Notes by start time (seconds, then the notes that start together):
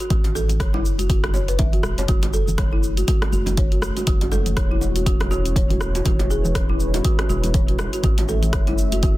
0.00 F#4, shaker
0.10 A1 F#4, kick, closed hi-hat, high conga, low conga, shaker
0.24 closed hi-hat, high bongo, muted conga
0.35 A4, low bongo, high conga, shaker
0.49 closed hi-hat, muted conga, low conga, shaker
0.60 F#1 C#5, kick, cross-stick, closed hi-hat, shaker
0.73 E4, low bongo, muted conga, high conga
0.85 shaker
0.98 F#4, closed hi-hat, high conga, shaker
1.09 F#4, kick, closed hi-hat, muted conga, shaker
1.24 cross-stick, closed hi-hat, low bongo
1.34 C#5, high bongo, muted conga, shaker
1.48 B4, closed hi-hat, shaker
1.59 E5, kick, closed hi-hat, low bongo, muted conga, shaker
1.73 F#4, closed hi-hat, low conga
1.83 E1, cross-stick, muted conga, high conga, shaker
1.98 F#1 C#5, closed hi-hat, high bongo, shaker
2.08 F#1 A3 C#4 E4 F#4 C#5, kick, closed hi-hat, high conga, low conga, shaker
2.22 closed hi-hat, high bongo, low bongo, muted conga
2.33 A4, high conga, shaker
2.47 muted conga, low conga, shaker
2.58 C#5, kick, cross-stick, closed hi-hat, low bongo, shaker
2.72 E4, muted conga, high conga
2.83 shaker
2.97 F#4, closed hi-hat, high conga, shaker
3.07 F#4, kick, closed hi-hat, low bongo, muted conga, shaker
3.22 cross-stick, closed hi-hat, high bongo
3.32 F#1 F#4, muted conga, high conga, shaker
3.46 closed hi-hat, low bongo, low conga, shaker
3.57 C#5, kick, closed hi-hat, muted conga, high conga, shaker
3.72 F#4, closed hi-hat
3.82 cross-stick, muted conga, shaker
3.97 F#4, closed hi-hat, low bongo, shaker
4.07 F#1 F#4, kick, closed hi-hat, high conga, low conga, shaker
4.21 closed hi-hat, high bongo, muted conga
4.32 A4, low bongo, high conga, shaker
4.46 closed hi-hat, muted conga, low conga, shaker
4.57 E1 C#5, kick, cross-stick, closed hi-hat, shaker
4.71 E4, muted conga, high conga
4.81 low bongo, shaker
4.96 F#4, closed hi-hat, high conga, shaker
5.06 F#4, kick, closed hi-hat, muted conga, shaker
5.20 cross-stick, closed hi-hat, low bongo
5.31 F#4, high bongo, muted conga, shaker
5.45 closed hi-hat, shaker
5.56 C#5, kick, closed hi-hat, muted conga, shaker
5.69 F#4, closed hi-hat, low bongo, low conga
5.80 cross-stick, muted conga, high conga, shaker
5.95 F#4, closed hi-hat, high bongo, shaker
6.05 E1 G#3 F#4 B4, kick, closed hi-hat, low bongo, high conga, low conga, shaker
6.19 closed hi-hat, high bongo, muted conga
6.31 G#4, high conga, shaker
6.44 muted conga, low conga, shaker
6.55 C#5, kick, cross-stick, closed hi-hat, low bongo, shaker
6.69 E4, muted conga, high conga
6.80 shaker
6.94 F#4, closed hi-hat, low bongo, high conga, shaker
7.05 F#4, kick, closed hi-hat, shaker
7.19 cross-stick, closed hi-hat, high bongo
7.29 E1 F#4, muted conga, high conga, shaker
7.43 closed hi-hat, low bongo, low conga, shaker
7.54 C#5, kick, closed hi-hat, muted conga, high conga, shaker
7.68 F#4, closed hi-hat
7.79 cross-stick, low bongo, muted conga, shaker
7.93 F#4, closed hi-hat, shaker
8.03 A1 A3 F#4 E5, kick, closed hi-hat, high conga, low conga, shaker
8.18 closed hi-hat, high bongo, muted conga
8.28 A4, low bongo, high conga, shaker
8.42 closed hi-hat, muted conga, low conga, shaker
8.53 F#1 C#5, kick, cross-stick, closed hi-hat, shaker
8.67 E4, closed hi-hat, low bongo, muted conga, high conga
8.78 shaker
8.92 F#4, closed hi-hat, high conga, shaker
9.03 F#4, kick, closed hi-hat, muted conga, shaker